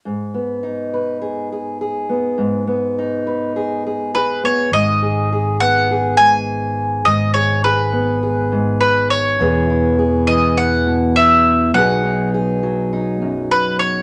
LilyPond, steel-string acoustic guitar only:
\new Staff \with { instrumentName = "Steel-string acoustic guitar" } { \time 4/4 \key gis \phrygian \tempo 4 = 103 << { r4 dis'8 b'8 gis'8 gis'8 gis'4 | r4 dis'8 b'8 gis'8 gis'8 gis'4 | r8 gis'8 gis'4 gis'2 | r8 gis'8 gis'4 gis'2 |
<e b e' gis'>8 e'8 gis'4 e'2 | <fis b dis' gis'>8 dis'8 gis'4 dis'2 | } \\ { gis,8 b2. b8 | gis,8 b2. b8 | gis,4. b4 gis,4. | gis,4. b4 gis,4. |
e,4. e4 b,4. | b,4. fis4 fis,4. | } >> }